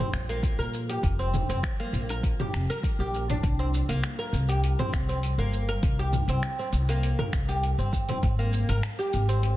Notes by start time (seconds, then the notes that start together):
Already playing: F3 F4
0.13 A#1, finger snap, shaker
0.29 A#3, open hi-hat, shaker
0.43 kick, open hi-hat, shaker
0.58 A#2 A#4, shaker
0.74 shaker
0.89 G4, open hi-hat, shaker
1.03 F1, kick, open hi-hat, shaker
1.19 C4, shaker
1.34 mid tom, shaker
1.49 F1 C4, open hi-hat, shaker
1.63 finger snap, kick, open hi-hat, shaker
1.80 A#3, open hi-hat, shaker
1.93 A#1, open hi-hat, shaker
2.09 A#4, open hi-hat, shaker
2.23 kick, open hi-hat, shaker
2.40 G4, mid tom, shaker
2.53 F1, finger snap, open hi-hat, shaker
2.70 A#4, open hi-hat, shaker
2.83 kick, open hi-hat, shaker
2.99 A#1 G4, shaker
3.14 shaker
3.30 D4, mid tom, open hi-hat, shaker
3.43 C2, kick, open hi-hat, shaker
3.59 C4, shaker
3.74 shaker
3.89 C2 A#3, open hi-hat, shaker
4.04 finger snap, open hi-hat, shaker
4.19 A#4, shaker
4.33 C2, open hi-hat, shaker
4.49 G4, open hi-hat, shaker
4.64 open hi-hat, shaker
4.79 C4, mid tom, shaker
4.93 C2, finger snap, kick, shaker
5.09 C4, open hi-hat, shaker
5.23 open hi-hat, shaker
5.38 G1 A#3, shaker
5.53 shaker
5.69 A#4, open hi-hat, shaker
5.83 C2, kick, open hi-hat, shaker
5.99 G4, shaker
6.13 mid tom, shaker
6.28 C2 C4, open hi-hat, shaker
6.43 finger snap, open hi-hat, shaker
6.59 C4, shaker
6.73 C2, open hi-hat, shaker
6.89 A#3, open hi-hat, shaker
7.03 open hi-hat, shaker
7.19 A#4, mid tom, shaker
7.33 C2, finger snap, kick, shaker
7.49 G4, open hi-hat, shaker
7.63 open hi-hat, shaker
7.78 G1 C4, shaker
7.93 kick, shaker
8.09 C4, mid tom, open hi-hat, shaker
8.23 G#1, kick, open hi-hat, shaker
8.39 A#3, shaker
8.53 shaker
8.69 G#1 A#4, open hi-hat, shaker
8.83 finger snap, open hi-hat, shaker
8.99 G4, shaker
9.13 G#1, open hi-hat, shaker
9.29 C4, open hi-hat, shaker
9.43 open hi-hat, shaker